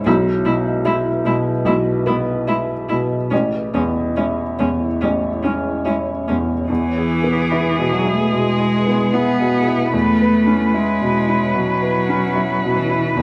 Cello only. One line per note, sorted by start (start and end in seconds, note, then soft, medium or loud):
0.04 0.12 G#3 medium
0.45 0.53 G#3 soft
0.85 0.93 G#3 medium
1.25 1.33 G#3 medium
1.66 1.74 G#3 medium
2.08 2.16 G#3 soft
2.48 2.56 G#3 medium
2.90 2.98 G#3 soft
3.32 3.40 G#3 medium
3.74 3.82 G#3 soft
4.16 4.24 G#3 soft
4.59 4.67 G#3 soft
5.02 5.10 G#3 soft
5.45 5.53 G#3 soft
5.87 5.95 G#3 soft
6.29 6.37 G#3 soft
6.70 7.94 E3 medium
7.92 8.15 F#3 medium
8.14 8.34 A3 medium
8.33 9.14 G#3 medium
9.13 9.94 B3 medium
9.95 10.76 A3 medium
10.75 11.56 G#3 medium
11.55 12.77 F#3 medium
12.76 13.15 E3 medium
13.15 13.22 D#3 medium